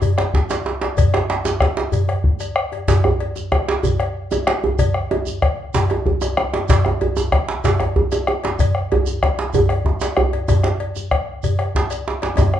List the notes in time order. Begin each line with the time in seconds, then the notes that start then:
0.02 cowbell, djembe bass, shekere
0.18 bombo rim, cowbell, djembe slap
0.34 bombo low, djembe slap
0.50 cowbell, djembe slap, shekere
0.66 djembe slap
0.81 cowbell, djembe slap
0.97 bombo rim, bombo low, cowbell, djembe slap, djembe bass, shekere
1.14 bombo rim, djembe slap
1.30 cowbell, djembe slap
1.45 djembe slap, djembe tone, shekere
1.60 bombo rim, bombo low, cowbell, djembe slap
1.77 djembe slap
1.92 cowbell, djembe bass, shekere
2.08 bombo rim, cowbell, djembe tone
2.24 bombo low
2.40 cowbell, djembe slap, shekere
2.56 bombo rim
2.72 cowbell, djembe tone
2.88 bombo rim, bombo low, cowbell, djembe slap, djembe bass, shekere
3.04 bombo rim, djembe bass
3.20 cowbell
3.36 djembe slap, djembe tone, shekere
3.52 bombo rim, bombo low, cowbell, djembe tone
3.69 djembe slap
3.83 cowbell, djembe bass, shekere
3.99 bombo rim, cowbell, djembe tone
4.31 cowbell, djembe slap, djembe tone, shekere
4.47 bombo rim, djembe slap
4.63 djembe tone, djembe bass
4.79 bombo rim, bombo low, cowbell, djembe bass, shekere
4.94 bombo rim
5.11 cowbell, djembe slap, djembe tone
5.26 djembe slap, djembe tone, shekere
5.42 bombo rim, bombo low, cowbell
5.59 djembe slap
5.74 bombo rim, cowbell, djembe slap, djembe bass, shekere
5.90 cowbell, djembe tone
6.06 bombo rim, bombo low, djembe bass
6.21 bombo rim, cowbell, djembe slap, djembe tone, shekere
6.37 bombo rim, djembe tone
6.54 bombo rim, cowbell, djembe slap, djembe tone
6.69 bombo rim, bombo low, cowbell, djembe slap, djembe bass, shekere
6.85 bombo rim, djembe tone
7.01 cowbell, djembe bass
7.17 djembe slap, djembe tone, shekere
7.32 bombo rim, bombo low, cowbell, djembe tone
7.49 djembe slap
7.64 cowbell, djembe slap, djembe bass, shekere
7.80 bombo rim, cowbell, djembe tone
7.96 bombo low, djembe bass
8.12 cowbell, djembe slap, djembe tone, shekere
8.27 bombo rim, djembe tone
8.44 cowbell, djembe slap, djembe tone
8.59 bombo rim, bombo low, cowbell, djembe slap, djembe bass, shekere
8.75 bombo rim
8.92 cowbell, djembe bass
9.06 djembe slap, djembe tone, shekere
9.23 bombo rim, bombo low, cowbell, djembe tone
9.39 djembe slap
9.53 cowbell, djembe bass, shekere
9.69 bombo rim, cowbell, djembe tone
9.85 bombo low, djembe tone
10.01 cowbell, djembe slap, shekere
10.17 bombo rim, djembe bass
10.33 cowbell, djembe tone
10.48 bombo rim, bombo low, cowbell, djembe slap, djembe tone, djembe bass, shekere
10.63 bombo rim, djembe slap
10.80 cowbell
10.96 djembe slap, djembe tone, shekere
11.11 bombo rim, bombo low, cowbell
11.43 cowbell, djembe bass, shekere
11.59 bombo rim, cowbell, djembe tone
11.75 bombo low, djembe slap
11.91 cowbell, djembe slap, shekere
12.08 djembe slap
12.22 cowbell, djembe slap, djembe tone
12.37 bombo rim, bombo low, cowbell, djembe slap, djembe tone, djembe bass, shekere
12.54 bombo rim, djembe slap